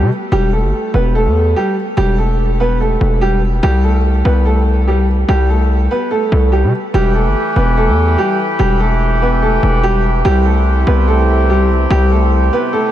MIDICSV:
0, 0, Header, 1, 4, 480
1, 0, Start_track
1, 0, Key_signature, 1, "minor"
1, 0, Tempo, 413793
1, 370, Time_signature, 4, 2, 24, 8
1, 14984, End_track
2, 0, Start_track
2, 0, Title_t, "Upright piano"
2, 0, Program_c, 0, 0
2, 371, Note_on_c, 0, 67, 104
2, 382, Note_on_c, 0, 55, 81
2, 571, Note_off_c, 0, 67, 0
2, 577, Note_off_c, 0, 55, 0
2, 609, Note_on_c, 0, 69, 70
2, 618, Note_on_c, 0, 57, 60
2, 1061, Note_off_c, 0, 69, 0
2, 1066, Note_off_c, 0, 57, 0
2, 1093, Note_on_c, 0, 71, 81
2, 1102, Note_on_c, 0, 59, 65
2, 1292, Note_off_c, 0, 71, 0
2, 1297, Note_off_c, 0, 59, 0
2, 1335, Note_on_c, 0, 69, 80
2, 1344, Note_on_c, 0, 57, 64
2, 1784, Note_off_c, 0, 69, 0
2, 1788, Note_off_c, 0, 57, 0
2, 1814, Note_on_c, 0, 67, 86
2, 1823, Note_on_c, 0, 55, 70
2, 2013, Note_off_c, 0, 67, 0
2, 2018, Note_off_c, 0, 55, 0
2, 2285, Note_on_c, 0, 67, 105
2, 2295, Note_on_c, 0, 55, 79
2, 2488, Note_off_c, 0, 67, 0
2, 2493, Note_off_c, 0, 55, 0
2, 2531, Note_on_c, 0, 69, 78
2, 2540, Note_on_c, 0, 57, 59
2, 2982, Note_off_c, 0, 69, 0
2, 2987, Note_off_c, 0, 57, 0
2, 3017, Note_on_c, 0, 71, 82
2, 3025, Note_on_c, 0, 59, 64
2, 3214, Note_off_c, 0, 71, 0
2, 3219, Note_off_c, 0, 59, 0
2, 3252, Note_on_c, 0, 69, 74
2, 3261, Note_on_c, 0, 57, 65
2, 3702, Note_off_c, 0, 69, 0
2, 3707, Note_off_c, 0, 57, 0
2, 3729, Note_on_c, 0, 67, 93
2, 3738, Note_on_c, 0, 55, 67
2, 3929, Note_off_c, 0, 67, 0
2, 3935, Note_off_c, 0, 55, 0
2, 4209, Note_on_c, 0, 67, 103
2, 4217, Note_on_c, 0, 55, 81
2, 4409, Note_off_c, 0, 67, 0
2, 4414, Note_off_c, 0, 55, 0
2, 4449, Note_on_c, 0, 69, 76
2, 4459, Note_on_c, 0, 57, 58
2, 4901, Note_off_c, 0, 69, 0
2, 4906, Note_off_c, 0, 57, 0
2, 4928, Note_on_c, 0, 71, 79
2, 4938, Note_on_c, 0, 59, 61
2, 5129, Note_off_c, 0, 71, 0
2, 5135, Note_off_c, 0, 59, 0
2, 5167, Note_on_c, 0, 69, 74
2, 5176, Note_on_c, 0, 57, 59
2, 5620, Note_off_c, 0, 69, 0
2, 5624, Note_off_c, 0, 57, 0
2, 5655, Note_on_c, 0, 67, 78
2, 5664, Note_on_c, 0, 55, 65
2, 5853, Note_off_c, 0, 67, 0
2, 5858, Note_off_c, 0, 55, 0
2, 6133, Note_on_c, 0, 67, 102
2, 6142, Note_on_c, 0, 55, 78
2, 6332, Note_off_c, 0, 67, 0
2, 6337, Note_off_c, 0, 55, 0
2, 6374, Note_on_c, 0, 69, 77
2, 6383, Note_on_c, 0, 57, 61
2, 6823, Note_off_c, 0, 69, 0
2, 6828, Note_off_c, 0, 57, 0
2, 6854, Note_on_c, 0, 71, 84
2, 6864, Note_on_c, 0, 59, 62
2, 7053, Note_off_c, 0, 71, 0
2, 7058, Note_off_c, 0, 59, 0
2, 7086, Note_on_c, 0, 69, 79
2, 7094, Note_on_c, 0, 57, 59
2, 7539, Note_off_c, 0, 69, 0
2, 7543, Note_off_c, 0, 57, 0
2, 7563, Note_on_c, 0, 67, 80
2, 7574, Note_on_c, 0, 55, 62
2, 7766, Note_off_c, 0, 67, 0
2, 7772, Note_off_c, 0, 55, 0
2, 8053, Note_on_c, 0, 67, 108
2, 8063, Note_on_c, 0, 55, 84
2, 8252, Note_off_c, 0, 67, 0
2, 8258, Note_off_c, 0, 55, 0
2, 8290, Note_on_c, 0, 69, 73
2, 8299, Note_on_c, 0, 57, 65
2, 8741, Note_off_c, 0, 69, 0
2, 8746, Note_off_c, 0, 57, 0
2, 8775, Note_on_c, 0, 71, 81
2, 8784, Note_on_c, 0, 59, 64
2, 8973, Note_off_c, 0, 71, 0
2, 8979, Note_off_c, 0, 59, 0
2, 9015, Note_on_c, 0, 69, 80
2, 9024, Note_on_c, 0, 57, 65
2, 9464, Note_off_c, 0, 69, 0
2, 9469, Note_off_c, 0, 57, 0
2, 9491, Note_on_c, 0, 67, 90
2, 9501, Note_on_c, 0, 55, 68
2, 9691, Note_off_c, 0, 67, 0
2, 9696, Note_off_c, 0, 55, 0
2, 9964, Note_on_c, 0, 67, 106
2, 9974, Note_on_c, 0, 55, 83
2, 10167, Note_off_c, 0, 67, 0
2, 10172, Note_off_c, 0, 55, 0
2, 10210, Note_on_c, 0, 69, 83
2, 10219, Note_on_c, 0, 57, 59
2, 10661, Note_off_c, 0, 69, 0
2, 10666, Note_off_c, 0, 57, 0
2, 10695, Note_on_c, 0, 71, 82
2, 10705, Note_on_c, 0, 59, 68
2, 10893, Note_off_c, 0, 71, 0
2, 10899, Note_off_c, 0, 59, 0
2, 10932, Note_on_c, 0, 69, 81
2, 10941, Note_on_c, 0, 57, 68
2, 11382, Note_off_c, 0, 69, 0
2, 11387, Note_off_c, 0, 57, 0
2, 11408, Note_on_c, 0, 67, 98
2, 11417, Note_on_c, 0, 55, 67
2, 11609, Note_off_c, 0, 67, 0
2, 11614, Note_off_c, 0, 55, 0
2, 11888, Note_on_c, 0, 67, 110
2, 11898, Note_on_c, 0, 55, 83
2, 12089, Note_off_c, 0, 67, 0
2, 12095, Note_off_c, 0, 55, 0
2, 12128, Note_on_c, 0, 69, 79
2, 12138, Note_on_c, 0, 57, 58
2, 12580, Note_off_c, 0, 69, 0
2, 12586, Note_off_c, 0, 57, 0
2, 12607, Note_on_c, 0, 71, 82
2, 12617, Note_on_c, 0, 59, 63
2, 12809, Note_off_c, 0, 71, 0
2, 12814, Note_off_c, 0, 59, 0
2, 12849, Note_on_c, 0, 69, 76
2, 12858, Note_on_c, 0, 57, 61
2, 13300, Note_off_c, 0, 69, 0
2, 13305, Note_off_c, 0, 57, 0
2, 13335, Note_on_c, 0, 67, 80
2, 13345, Note_on_c, 0, 55, 64
2, 13533, Note_off_c, 0, 67, 0
2, 13539, Note_off_c, 0, 55, 0
2, 13813, Note_on_c, 0, 67, 103
2, 13821, Note_on_c, 0, 55, 79
2, 14012, Note_off_c, 0, 67, 0
2, 14017, Note_off_c, 0, 55, 0
2, 14054, Note_on_c, 0, 69, 78
2, 14063, Note_on_c, 0, 57, 66
2, 14503, Note_off_c, 0, 69, 0
2, 14508, Note_off_c, 0, 57, 0
2, 14534, Note_on_c, 0, 71, 84
2, 14543, Note_on_c, 0, 59, 63
2, 14732, Note_off_c, 0, 71, 0
2, 14738, Note_off_c, 0, 59, 0
2, 14764, Note_on_c, 0, 69, 82
2, 14773, Note_on_c, 0, 57, 61
2, 14984, Note_off_c, 0, 57, 0
2, 14984, Note_off_c, 0, 69, 0
2, 14984, End_track
3, 0, Start_track
3, 0, Title_t, "Harmonium"
3, 0, Program_c, 1, 20
3, 8050, Note_on_c, 1, 52, 83
3, 8050, Note_on_c, 1, 71, 94
3, 8051, Note_on_c, 1, 64, 75
3, 8051, Note_on_c, 1, 67, 81
3, 11851, Note_off_c, 1, 52, 0
3, 11852, Note_off_c, 1, 71, 0
3, 11888, Note_on_c, 1, 48, 85
3, 11889, Note_on_c, 1, 60, 77
3, 14984, Note_off_c, 1, 48, 0
3, 14984, Note_off_c, 1, 60, 0
3, 14984, Note_off_c, 1, 64, 0
3, 14984, Note_off_c, 1, 67, 0
3, 14984, End_track
4, 0, Start_track
4, 0, Title_t, "808-style bass"
4, 0, Program_c, 2, 38
4, 17, Note_on_c, 2, 48, 102
4, 124, Note_off_c, 2, 48, 0
4, 369, Note_on_c, 2, 28, 108
4, 737, Note_on_c, 2, 31, 99
4, 754, Note_off_c, 2, 28, 0
4, 844, Note_off_c, 2, 31, 0
4, 1090, Note_on_c, 2, 28, 108
4, 1457, Note_on_c, 2, 40, 102
4, 1474, Note_off_c, 2, 28, 0
4, 1792, Note_off_c, 2, 40, 0
4, 2290, Note_on_c, 2, 28, 114
4, 3443, Note_off_c, 2, 28, 0
4, 3491, Note_on_c, 2, 28, 106
4, 4181, Note_off_c, 2, 28, 0
4, 4211, Note_on_c, 2, 36, 116
4, 4902, Note_off_c, 2, 36, 0
4, 4931, Note_on_c, 2, 36, 104
4, 6084, Note_off_c, 2, 36, 0
4, 6131, Note_on_c, 2, 36, 116
4, 6822, Note_off_c, 2, 36, 0
4, 7331, Note_on_c, 2, 36, 110
4, 7698, Note_on_c, 2, 48, 98
4, 7715, Note_off_c, 2, 36, 0
4, 7805, Note_off_c, 2, 48, 0
4, 8051, Note_on_c, 2, 28, 112
4, 8419, Note_on_c, 2, 31, 93
4, 8436, Note_off_c, 2, 28, 0
4, 8525, Note_off_c, 2, 31, 0
4, 8771, Note_on_c, 2, 28, 108
4, 9138, Note_on_c, 2, 40, 102
4, 9155, Note_off_c, 2, 28, 0
4, 9473, Note_off_c, 2, 40, 0
4, 9970, Note_on_c, 2, 28, 114
4, 11124, Note_off_c, 2, 28, 0
4, 11170, Note_on_c, 2, 28, 107
4, 11861, Note_off_c, 2, 28, 0
4, 11889, Note_on_c, 2, 36, 114
4, 12581, Note_off_c, 2, 36, 0
4, 12609, Note_on_c, 2, 36, 106
4, 13763, Note_off_c, 2, 36, 0
4, 13809, Note_on_c, 2, 36, 115
4, 14501, Note_off_c, 2, 36, 0
4, 14984, End_track
0, 0, End_of_file